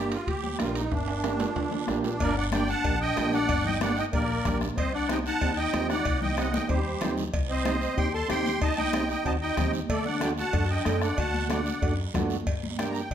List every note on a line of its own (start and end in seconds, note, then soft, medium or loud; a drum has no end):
0.00 0.15 G1 medium
0.00 0.17 A#3 medium
0.00 0.18 D4 medium
0.00 0.13 G4 loud
0.00 0.18 G4 medium
0.12 0.29 F4 medium
0.12 high timbale medium
0.12 short guiro medium
0.27 0.53 D2 loud
0.27 0.58 G4 loud
0.27 bombo low medium
0.27 high timbale medium
0.27 long guiro medium
0.44 high conga medium
0.59 0.85 A#1 medium
0.59 0.82 A#3 medium
0.59 0.82 D4 medium
0.59 0.75 F4 medium
0.59 0.82 G4 medium
0.59 bombo rim medium
0.59 high conga medium
0.59 high timbale medium
0.59 low timbale medium
0.59 short guiro medium
0.75 0.93 D#4 medium
0.75 high timbale medium
0.75 short guiro medium
0.92 1.43 G1 medium
0.92 2.01 D4 medium
0.92 bombo low medium
0.92 high timbale medium
0.92 long guiro medium
1.08 high timbale medium
1.24 1.46 A#3 medium
1.24 1.47 D4 medium
1.24 1.47 G4 medium
1.24 bombo rim medium
1.24 high conga medium
1.24 high timbale medium
1.24 short guiro medium
1.39 low timbale medium
1.39 short guiro medium
1.56 1.82 D2 loud
1.56 bombo low medium
1.56 low timbale medium
1.56 long guiro medium
1.72 high conga medium
1.72 low timbale medium
1.87 2.14 A#1 medium
1.87 2.11 A#3 medium
1.87 2.11 D4 medium
1.87 2.11 G4 medium
1.87 bombo rim medium
1.87 high conga medium
1.87 low timbale medium
1.87 short guiro medium
2.04 2.34 D4 medium
2.04 low timbale medium
2.04 short guiro medium
2.20 2.72 G1 loud
2.20 2.35 A#3 medium
2.20 2.36 A#4 medium
2.20 2.35 D5 loud
2.20 bombo low medium
2.20 cowbell loud
2.20 high conga soft
2.20 long guiro medium
2.37 2.44 D4 medium
2.37 2.45 D5 medium
2.37 2.45 F#5 loud
2.52 2.64 A#3 medium
2.52 2.64 D4 medium
2.52 2.68 D4 medium
2.52 2.64 G4 medium
2.52 2.68 D5 medium
2.52 2.69 G5 medium
2.52 bombo rim medium
2.52 cowbell medium
2.52 high conga medium
2.52 short guiro medium
2.68 2.99 D4 medium
2.68 2.99 F#5 loud
2.68 2.99 A5 loud
2.68 short guiro medium
2.84 3.10 A#1 loud
2.84 2.96 A#3 medium
2.84 2.96 D4 medium
2.84 2.96 G4 medium
2.84 bombo low medium
2.84 cowbell medium
2.84 high conga soft
2.84 long guiro medium
3.01 3.31 D4 medium
3.01 3.31 D#5 medium
3.01 3.34 G5 loud
3.16 3.42 A#1 loud
3.16 3.39 A#3 medium
3.16 3.39 D4 medium
3.16 3.39 G4 medium
3.16 bombo rim medium
3.16 cowbell medium
3.16 high conga medium
3.16 low timbale medium
3.16 short guiro medium
3.33 3.63 D4 medium
3.33 3.63 D5 medium
3.33 3.66 F#5 loud
3.33 high conga medium
3.33 short guiro medium
3.49 4.00 G1 loud
3.49 bombo low medium
3.49 cowbell loud
3.49 high conga soft
3.49 long guiro medium
3.65 3.80 D#4 medium
3.65 3.80 D#5 medium
3.65 3.82 G5 loud
3.65 low conga medium
3.81 3.92 A#3 medium
3.81 3.92 D4 medium
3.81 3.96 D4 medium
3.81 3.92 G4 medium
3.81 3.96 D5 medium
3.81 3.98 F#5 medium
3.81 bombo rim medium
3.81 cowbell medium
3.81 high conga medium
3.81 short guiro medium
3.97 4.05 D#4 medium
3.97 4.05 D#5 medium
3.97 4.04 G5 loud
3.97 short guiro medium
4.13 4.39 A#1 loud
4.13 4.24 A#3 medium
4.13 4.58 A#3 medium
4.13 4.24 D4 medium
4.13 4.25 G4 medium
4.13 4.58 A#4 medium
4.13 4.58 D5 medium
4.13 bombo low medium
4.13 cowbell medium
4.13 high conga soft
4.13 long guiro medium
4.45 4.71 A#1 medium
4.45 4.68 A#3 medium
4.45 4.68 D4 medium
4.45 4.68 G4 medium
4.45 bombo low medium
4.45 bombo rim medium
4.45 cowbell medium
4.45 high conga medium
4.45 low conga medium
4.45 short guiro medium
4.61 bombo rim medium
4.61 high conga medium
4.61 short guiro medium
4.77 5.29 C2 loud
4.77 4.92 C4 medium
4.77 4.92 C5 medium
4.77 4.92 D#5 loud
4.77 bombo low medium
4.77 cowbell loud
4.77 high conga soft
4.77 long guiro medium
4.94 5.09 D4 medium
4.94 5.09 D5 medium
4.94 5.10 F#5 loud
5.09 5.20 C4 medium
5.09 5.20 D#4 medium
5.09 5.18 D#4 medium
5.09 5.21 G4 medium
5.09 5.17 D#5 medium
5.09 5.17 G5 loud
5.09 bombo rim medium
5.09 cowbell medium
5.09 high conga medium
5.09 short guiro medium
5.26 5.56 D#4 medium
5.26 5.56 F#5 loud
5.26 5.59 A5 loud
5.26 short guiro medium
5.41 5.67 D#2 loud
5.41 5.52 C4 medium
5.41 5.53 D#4 medium
5.41 5.53 G4 medium
5.41 bombo low medium
5.41 cowbell loud
5.41 high conga soft
5.41 long guiro medium
5.57 5.88 D#4 medium
5.57 5.87 D#5 medium
5.57 5.87 G5 loud
5.73 5.99 D#2 loud
5.73 5.96 C4 medium
5.73 5.96 D#4 medium
5.73 5.96 G4 medium
5.73 bombo rim medium
5.73 cowbell medium
5.73 high conga medium
5.73 low timbale medium
5.73 short guiro medium
5.90 6.20 D#4 medium
5.90 6.20 D5 medium
5.90 6.19 F#5 loud
5.90 bombo rim medium
5.90 high conga medium
5.90 short guiro medium
6.05 6.57 C2 loud
6.05 bombo low medium
6.05 cowbell loud
6.05 high conga soft
6.05 long guiro medium
6.22 6.37 D#4 medium
6.22 6.36 D#5 medium
6.22 6.38 G5 loud
6.22 high conga medium
6.22 low conga medium
6.37 6.48 C4 medium
6.37 6.48 D#4 medium
6.37 6.53 D#4 medium
6.37 6.49 G4 medium
6.37 6.52 D#5 medium
6.37 6.54 F#5 medium
6.37 bombo rim medium
6.37 cowbell medium
6.37 high conga medium
6.37 short guiro medium
6.53 6.69 D#4 medium
6.53 6.68 D#5 medium
6.53 6.68 G5 loud
6.53 high conga loud
6.53 short guiro medium
6.69 6.95 D#2 loud
6.69 7.15 G3 medium
6.69 6.81 C4 medium
6.69 6.81 D#4 medium
6.69 7.14 G4 medium
6.69 6.81 G4 medium
6.69 7.14 C5 medium
6.69 bombo low medium
6.69 cowbell medium
6.69 long guiro medium
7.01 7.27 D#2 loud
7.01 7.24 C4 medium
7.01 7.24 D#4 medium
7.01 7.24 G4 medium
7.01 bombo rim medium
7.01 cowbell medium
7.01 low conga medium
7.01 low timbale medium
7.01 short guiro medium
7.17 low conga medium
7.17 short guiro medium
7.33 7.85 C2 loud
7.33 bombo low medium
7.33 cowbell loud
7.33 long guiro medium
7.49 7.94 C4 medium
7.49 7.94 C5 medium
7.49 7.99 D#5 loud
7.65 7.76 C4 medium
7.65 7.77 D#4 medium
7.65 7.77 G4 medium
7.65 bombo rim medium
7.65 cowbell medium
7.65 high conga medium
7.65 short guiro medium
7.81 short guiro medium
7.97 8.23 D#2 loud
7.97 8.08 C4 medium
7.97 8.09 D#4 medium
7.97 8.09 G4 medium
7.97 8.13 G4 medium
7.97 8.13 G5 medium
7.97 8.12 C6 loud
7.97 bombo low medium
7.97 cowbell medium
7.97 high conga soft
7.97 long guiro medium
8.14 8.29 A4 medium
8.14 8.29 A5 medium
8.14 8.29 C6 loud
8.28 8.56 D#2 medium
8.28 8.51 C4 medium
8.28 8.52 D#4 medium
8.28 8.59 G4 medium
8.28 8.52 G4 medium
8.28 8.60 G5 medium
8.28 8.63 C6 loud
8.28 bombo rim medium
8.28 cowbell medium
8.28 high conga medium
8.28 short guiro medium
8.45 high conga medium
8.45 short guiro medium
8.61 9.13 C2 loud
8.61 8.77 D#4 loud
8.61 8.76 D#5 medium
8.61 8.78 A5 loud
8.61 bombo low loud
8.61 cowbell loud
8.61 high conga soft
8.61 long guiro medium
8.77 9.08 D#4 medium
8.77 9.07 D#5 medium
8.77 9.09 G5 loud
8.77 high conga medium
8.93 9.04 C4 medium
8.93 9.05 D#4 medium
8.93 9.05 G4 medium
8.93 bombo rim loud
8.93 cowbell medium
8.93 high conga medium
8.93 short guiro medium
9.09 9.25 D#4 medium
9.09 9.24 D#5 medium
9.09 9.27 G5 loud
9.09 short guiro medium
9.25 9.51 D#2 loud
9.25 9.36 C4 medium
9.25 9.37 D#4 medium
9.25 9.34 D#4 medium
9.25 9.37 F#4 medium
9.25 9.33 D#5 medium
9.25 9.33 A5 medium
9.25 bombo low medium
9.25 cowbell medium
9.25 high conga soft
9.25 long guiro medium
9.41 9.72 D#4 medium
9.41 9.72 D#5 medium
9.41 9.71 G5 loud
9.57 9.83 D#2 medium
9.57 9.80 C4 medium
9.57 9.80 D#4 medium
9.57 9.80 G4 medium
9.57 bombo low medium
9.57 bombo rim medium
9.57 cowbell medium
9.57 high conga medium
9.57 low conga medium
9.57 short guiro medium
9.73 high conga medium
9.73 short guiro medium
9.89 10.41 D2 loud
9.89 10.05 A3 medium
9.89 10.05 A4 medium
9.89 10.04 D5 medium
9.89 bombo low medium
9.89 cowbell loud
9.89 high conga soft
9.89 long guiro medium
10.06 10.21 D4 medium
10.06 10.21 D5 medium
10.06 10.21 F#5 loud
10.06 high conga medium
10.21 10.33 A3 medium
10.21 10.33 D4 medium
10.21 10.29 D4 medium
10.21 10.33 F#4 medium
10.21 10.30 D5 medium
10.21 10.30 G5 medium
10.21 bombo rim medium
10.21 cowbell medium
10.21 high conga medium
10.21 short guiro medium
10.38 10.68 F#4 medium
10.38 10.68 F#5 medium
10.38 10.71 A5 loud
10.38 short guiro medium
10.53 10.80 F#2 loud
10.53 10.65 A3 medium
10.53 10.65 D4 medium
10.53 10.65 F#4 medium
10.53 bombo low medium
10.53 cowbell medium
10.53 high conga soft
10.53 long guiro medium
10.70 11.00 D4 medium
10.70 11.00 D#5 medium
10.70 11.00 G5 loud
10.85 11.12 F#2 medium
10.85 11.08 A3 medium
10.85 11.08 D4 medium
10.85 11.09 A4 medium
10.85 bombo rim medium
10.85 cowbell medium
10.85 high conga medium
10.85 short guiro medium
11.02 11.17 D4 medium
11.02 11.17 D5 medium
11.02 11.17 F#5 medium
11.02 bombo rim medium
11.02 short guiro medium
11.17 11.69 D2 loud
11.17 11.48 F#4 medium
11.17 11.48 F#5 medium
11.17 11.48 A5 loud
11.17 bombo low medium
11.17 cowbell loud
11.17 high conga soft
11.17 long guiro medium
11.34 high conga medium
11.49 11.61 A3 medium
11.49 11.61 D4 medium
11.49 11.95 D4 medium
11.49 11.62 F#4 medium
11.49 11.95 D5 medium
11.49 11.95 F#5 medium
11.49 bombo rim medium
11.49 cowbell medium
11.49 high conga medium
11.49 short guiro medium
11.66 short guiro medium
11.82 12.08 F#2 loud
11.82 11.93 A3 medium
11.82 11.93 D4 medium
11.82 11.94 F#4 medium
11.82 bombo low medium
11.82 cowbell medium
11.82 high conga soft
11.82 long guiro medium
12.14 12.40 F#2 medium
12.14 12.37 A3 medium
12.14 12.37 D4 medium
12.14 12.37 F#4 medium
12.14 bombo low medium
12.14 bombo rim medium
12.14 cowbell medium
12.14 high conga medium
12.14 low conga medium
12.14 low timbale medium
12.14 short guiro medium
12.30 high conga medium
12.30 short guiro medium
12.47 12.98 G2 medium
12.47 bombo low medium
12.47 cowbell loud
12.47 high conga soft
12.47 long guiro medium
12.63 high conga medium
12.78 13.01 A#3 medium
12.78 13.01 D4 medium
12.78 13.02 G4 medium
12.78 12.89 G5 medium
12.78 bombo rim medium
12.78 cowbell medium
12.78 high conga medium
12.78 short guiro medium
12.89 13.00 A#5 medium
12.95 short guiro medium
13.00 13.10 G5 medium
13.11 13.14 D2 loud
13.11 13.14 G5 medium
13.11 bombo low medium